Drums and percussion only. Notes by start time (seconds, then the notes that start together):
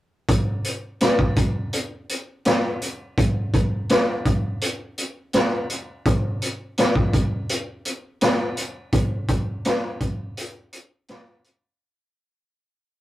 0.28 kick, closed hi-hat
0.64 closed hi-hat
1.00 snare, closed hi-hat
1.19 kick
1.36 kick, closed hi-hat
1.73 closed hi-hat
2.09 closed hi-hat
2.45 snare, closed hi-hat
2.82 closed hi-hat
3.18 kick, closed hi-hat
3.54 kick, closed hi-hat
3.89 snare, closed hi-hat
4.25 kick, closed hi-hat
4.61 closed hi-hat
4.98 closed hi-hat
5.33 snare, closed hi-hat
5.70 closed hi-hat
6.05 kick, closed hi-hat
6.42 closed hi-hat
6.78 snare, closed hi-hat
6.96 kick
7.13 kick, closed hi-hat
7.49 closed hi-hat
7.85 closed hi-hat
8.21 snare, closed hi-hat
8.57 closed hi-hat
8.92 kick, closed hi-hat
9.28 kick, closed hi-hat
9.65 snare, closed hi-hat
10.01 kick, closed hi-hat
10.37 closed hi-hat
10.73 closed hi-hat
11.08 snare, closed hi-hat
11.44 closed hi-hat